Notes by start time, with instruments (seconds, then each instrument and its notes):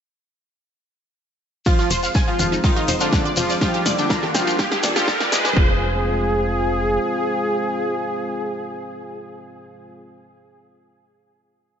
1.66 supersaw synth F3 F4, analog synth pad F3 G#3 C4 G#4 C5, synth pluck F4, kick, snare, closed hi-hat, riser, shekere
1.79 synth pluck F4, snare
1.90 analog synth bass F1, synth pluck C5, closed hi-hat, open hi-hat, shekere
2.03 synth pluck F5, snare, shekere
2.14 synth pluck G#5, kick, snare, closed hi-hat, shekere
2.28 supersaw synth F3 F4, synth pluck F4, closed hi-hat
2.39 analog synth bass F1, synth pluck F5, closed hi-hat, open hi-hat, low conga, shekere
2.52 synth pluck D#4, shekere
2.64 supersaw synth D#3 D#4, synth pluck F4, kick, snare, closed hi-hat, shekere
2.76 synth pluck F4, closed hi-hat
2.88 analog synth bass F1, synth pluck C5, closed hi-hat, open hi-hat, shekere
3.00 supersaw synth D3 D4, synth pluck F4, snare, shekere
3.12 synth pluck F4, kick, snare, closed hi-hat, shekere
3.25 synth pluck D5
3.37 analog synth bass F1, supersaw synth F3 F4, synth pluck F4, open hi-hat, shekere
3.50 synth pluck D5, shekere
3.61 supersaw synth F3 F4, analog synth pad G3 A#3 D4 F4 A#4, synth pluck G4, kick, snare, closed hi-hat, shekere
3.74 synth pluck G4
3.86 analog synth bass F1, synth pluck D5, snare, closed hi-hat, open hi-hat, shekere
3.98 supersaw synth D3 D4, synth pluck G5, shekere
4.10 synth pluck A#5, kick, snare, closed hi-hat, shekere
4.22 synth pluck G4, snare, low conga
4.34 analog synth bass F1, supersaw synth F3 F4, synth pluck G5, snare, closed hi-hat, open hi-hat, shekere
4.47 synth pluck F4, shekere
4.59 synth pluck G4, kick, snare, closed hi-hat, shekere
4.72 synth pluck G4, snare
4.83 analog synth bass F1, synth pluck D5, snare, closed hi-hat, open hi-hat, low conga, shekere
4.96 supersaw synth F3 F4, synth pluck G4, snare, closed hi-hat, shekere
5.07 synth pluck G4, kick, snare, closed hi-hat, shekere
5.20 synth pluck D5, snare
5.32 analog synth bass F1, supersaw synth G#3 G#4, synth pluck G4, snare, closed hi-hat, open hi-hat, shekere
5.45 synth pluck D5, snare, shekere
5.56 analog synth bass F1, analog synth pad G#3 C4 F4 C5 F5, synth pluck F4, supersaw synth G#4, kick